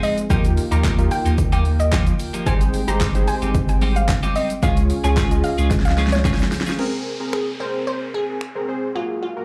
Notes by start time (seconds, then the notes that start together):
Already playing: F3 C4 D#4 G#4
0.03 G#3 C4 D#4 G#4 D#5, open hi-hat, shaker
0.17 muted clean electric guitar stroke, closed hi-hat, shaker
0.30 D#2 D#3 F3 A#3 D#4 F4 G4 A#4 G5, kick, closed hi-hat, shaker
0.45 muted clean electric guitar stroke, closed hi-hat, shaker
0.57 muted clean electric guitar stroke, open hi-hat, shaker
0.71 D#2 F3 A#3 D#4 F4 G4 A#4 A#5, closed hi-hat, shaker
0.84 F3 A#3 D#4 G4, kick, snare, clap, closed hi-hat, shaker
0.98 D#4 F4 G4 A#4, muted clean electric guitar stroke, closed hi-hat, shaker
1.11 G5, muted clean electric guitar stroke, open hi-hat, shaker
1.25 D#2 F3 A#3 D#4 G4, closed hi-hat, shaker
1.38 muted clean electric guitar stroke, kick, closed hi-hat, shaker
1.52 F3 A#3 D#4 G4 G5, closed hi-hat, shaker
1.65 muted clean electric guitar stroke, open hi-hat, shaker
1.80 D#5, muted clean electric guitar stroke, closed hi-hat, shaker
1.92 F3 A#3 D#4 G4, kick, snare, clap, closed hi-hat, shaker
2.07 muted clean electric guitar stroke, closed hi-hat, shaker
2.19 muted clean electric guitar stroke, open hi-hat, shaker
2.33 F3 A#3 D#4 G4, closed hi-hat, shaker
2.46 G#1 G3 G#3 C4 D#4 G4 G#4 C5 G#5, kick, closed hi-hat, shaker
2.61 muted clean electric guitar stroke, closed hi-hat, shaker
2.73 muted clean electric guitar stroke, open hi-hat, shaker
2.88 G#1 G3 C4 D#4 G4 G#4 C5 A#5, closed hi-hat, shaker
3.01 G3 C4 D#4 G4, kick, snare, clap, closed hi-hat, shaker
3.15 D#4 G4 G#4 C5, muted clean electric guitar stroke, closed hi-hat, shaker
3.28 G#5, muted clean electric guitar stroke, open hi-hat, shaker
3.42 G#1 G3 C4 D#4 G4, closed hi-hat, shaker
3.55 muted clean electric guitar stroke, kick, closed hi-hat, shaker
3.69 G#5, muted clean electric guitar stroke, closed hi-hat, shaker
3.81 G3 C4 D#4 G4, open hi-hat, shaker
3.96 F5, muted clean electric guitar stroke, closed hi-hat, shaker
4.09 muted clean electric guitar stroke, kick, snare, clap, closed hi-hat, shaker
4.23 G3 C4 D#4 G4, closed hi-hat, shaker
4.36 G3 C4 D#4 G4 D#5, open hi-hat, shaker
4.50 muted clean electric guitar stroke, closed hi-hat, shaker
4.63 C#2 C#3 G#3 C#4 F4 G#4 C#5 F5, kick, closed hi-hat, shaker
4.77 muted clean electric guitar stroke, closed hi-hat, shaker
4.90 muted clean electric guitar stroke, open hi-hat, shaker
5.04 C#2 G#3 C#4 F4 G#4 C#5 G#5, closed hi-hat, shaker
5.16 G#3 C#4 F4 G#4, kick, snare, clap, closed hi-hat, shaker
5.31 C#4 F4 G#4 D#5, muted clean electric guitar stroke, closed hi-hat, shaker
5.44 F5, muted clean electric guitar stroke, open hi-hat, shaker
5.58 C#2 G#3 C#4 F4 G#4, closed hi-hat, shaker
5.71 muted clean electric guitar stroke, kick, snare, closed hi-hat, shaker
5.80 snare
5.85 F5, muted clean electric guitar stroke, snare, closed hi-hat, shaker
5.97 G#3 C#4 F4 G#4, snare, open hi-hat, shaker
6.07 snare
6.12 C#5, muted clean electric guitar stroke, snare, closed hi-hat, shaker
6.25 G#3 C#4 F4 G#4, kick, snare, closed hi-hat, shaker
6.34 snare
6.39 muted clean electric guitar stroke, snare, closed hi-hat, shaker
6.52 muted clean electric guitar stroke, snare, open hi-hat, shaker
6.61 snare
6.66 G#3 C#4 F4 G#4, snare, closed hi-hat, shaker
6.79 C4 G#4 A#4, crash, downlifter
7.20 C4 G#4 A#4
7.33 G#4, finger snap
7.60 C4 G#4 A#4 C5
7.87 C5
8.14 G#4
8.41 finger snap
8.55 C4 G#4 A#4
8.68 C4 G#4 C5
8.95 A#3 F4 F#4 G#4
9.23 F4
9.36 A#3 F#4 A#4